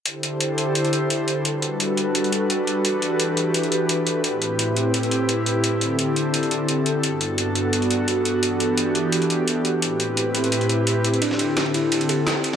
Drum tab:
RD |----------------|----------------|----------------|----------------|
HH |x-x-x-x-xxx-x-x-|x-x-x-x-xxx-x-x-|x-x-x-x-xxx-x-x-|x-x-x-x-xxx-x-x-|
SD |----------------|----------------|----------------|----------------|

RD |----------------|----------------|----------------|----------------|
HH |x-x-x-x-xxx-x-x-|x-x-x-x-xxx-x-x-|x-x-x-x-xxx-x-x-|x-x-x-xxxxx-x-xx|
SD |----------------|----------------|----------------|----------------|

RD |x-x-xxx-xxx-x-x-|
HH |x-x-x-x-xxx-x-x-|
SD |-o--o-------o---|